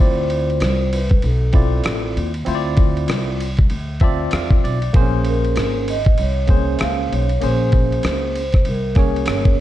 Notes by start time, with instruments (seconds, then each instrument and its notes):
Already playing: tine electric piano C4
0.00 upright bass D2, tine electric piano E4 F4 D5, vibraphone C5
0.30 ride
0.50 ride
0.60 upright bass C2, cross-stick, hi-hat pedal, ride
0.93 vibraphone B4, ride
1.10 kick, ride
1.22 upright bass B1, vibraphone A4, ride
1.53 tine electric piano C4 E4 F4 D5, kick, ride
1.84 upright bass A1, cross-stick, hi-hat pedal, ride
2.16 upright bass D#2, ride
2.34 ride
2.45 upright bass D2, tine electric piano C4 E4 F4 C5, ride
2.55 tine electric piano D5
2.77 kick, ride
2.97 ride
3.08 upright bass C2, cross-stick, hi-hat pedal, ride
3.40 ride
3.57 kick, ride
3.70 upright bass D2, ride
4.00 tine electric piano C4 F4 D5 E5 A5, kick, ride
4.31 upright bass E2, tine electric piano F5, cross-stick, hi-hat pedal, ride
4.51 kick
4.64 upright bass B1, tine electric piano D5, ride
4.82 ride
4.93 upright bass A#1, tine electric piano A#3 C4 G#4 C5, kick, ride
5.01 tine electric piano C#4
5.25 vibraphone A#4, ride
5.45 ride
5.56 upright bass G#1, cross-stick, hi-hat pedal, ride
5.88 vibraphone D#5, ride
6.05 kick, ride
6.18 upright bass C2, vibraphone C#5, ride
6.47 tine electric piano A#3 C4 G#4 C5, kick, ride
6.55 tine electric piano C#4
6.77 vibraphone E5, hi-hat pedal, ride
6.81 upright bass C#2, vibraphone F5, cross-stick
7.12 upright bass B1, vibraphone C#5, ride
7.29 ride
7.40 upright bass A#1, tine electric piano A#3 C#4 G#4 C5, vibraphone C5, ride
7.72 kick, ride
7.92 ride
8.03 upright bass C#2, cross-stick, hi-hat pedal, ride
8.35 ride
8.52 kick, cross-stick, ride
8.65 upright bass C2, vibraphone A#4, ride
8.95 tine electric piano A#3 C#4 G#4 C#5, kick, cross-stick, ride
9.16 ride
9.26 upright bass G1, cross-stick, hi-hat pedal, ride
9.31 vibraphone C#5
9.45 kick